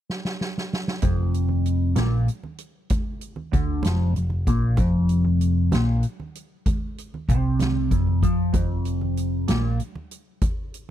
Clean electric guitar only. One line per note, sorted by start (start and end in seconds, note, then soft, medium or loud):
1.02 1.96 F2 loud
1.96 2.27 A#2 loud
3.53 3.84 D3 loud
3.84 4.15 F2 loud
4.48 4.78 A#2 loud
4.78 5.72 F2 loud
5.73 6.03 A#2 loud
7.29 7.91 C3 loud
7.91 8.22 F2 medium
8.23 8.53 F3 loud
8.53 9.46 F2 loud
9.48 9.78 A#2 loud